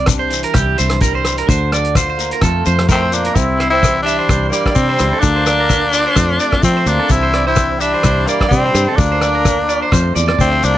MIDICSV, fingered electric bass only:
0, 0, Header, 1, 2, 480
1, 0, Start_track
1, 0, Tempo, 468750
1, 1518, Time_signature, 4, 2, 24, 8
1, 11038, End_track
2, 0, Start_track
2, 0, Title_t, "Fingered electric bass"
2, 0, Program_c, 0, 33
2, 0, Note_on_c, 0, 36, 99
2, 451, Note_off_c, 0, 36, 0
2, 567, Note_on_c, 0, 36, 78
2, 777, Note_off_c, 0, 36, 0
2, 815, Note_on_c, 0, 36, 76
2, 1449, Note_off_c, 0, 36, 0
2, 1521, Note_on_c, 0, 38, 107
2, 2374, Note_off_c, 0, 38, 0
2, 2481, Note_on_c, 0, 41, 91
2, 2693, Note_off_c, 0, 41, 0
2, 2732, Note_on_c, 0, 41, 92
2, 3367, Note_off_c, 0, 41, 0
2, 3438, Note_on_c, 0, 36, 89
2, 4292, Note_off_c, 0, 36, 0
2, 4392, Note_on_c, 0, 36, 84
2, 4608, Note_off_c, 0, 36, 0
2, 4874, Note_on_c, 0, 48, 72
2, 5089, Note_off_c, 0, 48, 0
2, 5123, Note_on_c, 0, 37, 86
2, 5237, Note_off_c, 0, 37, 0
2, 5356, Note_on_c, 0, 38, 83
2, 6212, Note_off_c, 0, 38, 0
2, 6313, Note_on_c, 0, 41, 94
2, 6528, Note_off_c, 0, 41, 0
2, 6790, Note_on_c, 0, 53, 79
2, 7007, Note_off_c, 0, 53, 0
2, 7027, Note_on_c, 0, 38, 91
2, 7148, Note_off_c, 0, 38, 0
2, 7267, Note_on_c, 0, 36, 86
2, 8127, Note_off_c, 0, 36, 0
2, 8236, Note_on_c, 0, 36, 98
2, 8451, Note_off_c, 0, 36, 0
2, 8719, Note_on_c, 0, 48, 81
2, 8932, Note_off_c, 0, 48, 0
2, 8955, Note_on_c, 0, 43, 88
2, 9073, Note_off_c, 0, 43, 0
2, 9194, Note_on_c, 0, 38, 85
2, 10051, Note_off_c, 0, 38, 0
2, 10167, Note_on_c, 0, 41, 89
2, 10376, Note_off_c, 0, 41, 0
2, 10406, Note_on_c, 0, 40, 78
2, 10618, Note_off_c, 0, 40, 0
2, 10643, Note_on_c, 0, 38, 71
2, 10857, Note_off_c, 0, 38, 0
2, 10890, Note_on_c, 0, 36, 78
2, 11038, Note_off_c, 0, 36, 0
2, 11038, End_track
0, 0, End_of_file